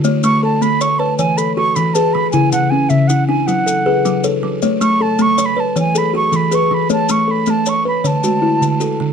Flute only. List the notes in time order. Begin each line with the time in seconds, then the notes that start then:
0.24 C#6
0.44 A5
0.62 B5
0.81 C#6
0.99 A5
1.18 G#5
1.37 B5
1.56 C#6
1.76 B5
1.94 A5
2.13 B5
2.32 G#5
2.52 F#5
2.70 G#5
2.89 E5
3.08 F#5
3.28 G#5
3.47 F#5
4.82 C#6
5.02 A5
5.22 C#6
5.41 C#6
5.46 B5
5.60 A5
5.80 G#5
5.98 B5
6.16 C#6
6.36 B5
6.55 C#6
6.74 B5
6.92 A5
7.11 C#6
7.31 B5
7.50 A5
7.69 C#6
7.88 B5
8.07 A5